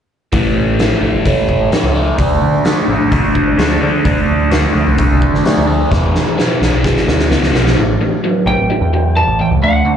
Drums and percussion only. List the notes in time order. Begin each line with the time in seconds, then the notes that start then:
0.32 kick, open hi-hat
0.79 snare, open hi-hat
1.25 kick, open hi-hat
1.49 kick
1.72 snare, open hi-hat
2.18 kick, open hi-hat
2.65 snare, open hi-hat
3.12 kick, open hi-hat
3.35 kick
3.59 snare, open hi-hat
4.05 kick, open hi-hat
4.51 snare, open hi-hat
4.98 kick, open hi-hat
5.22 kick
5.35 snare
5.45 snare, open hi-hat
5.92 kick, snare
6.15 snare
6.39 snare
6.62 snare
6.84 kick, snare
6.97 snare
7.08 snare
7.20 snare
7.31 snare
7.43 snare
7.55 snare
7.67 snare